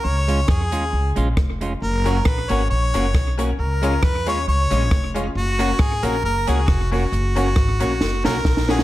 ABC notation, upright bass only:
X:1
M:4/4
L:1/8
Q:"Swing" 1/4=136
K:F#
V:1 name="Upright bass" clef=bass
C,,2 E,, D,, C,, A,,, E,,,2 | F,,,2 A,,, G,,, A,,, F,,, B,,,2 | C,,2 E,, D,, C,, A,,, E,,,2 | F,,,2 G,,, A,,, F,,, C,, E,,,2 |
F,,,2 G,,, A,,, F,,, B,,, A,,,2 |]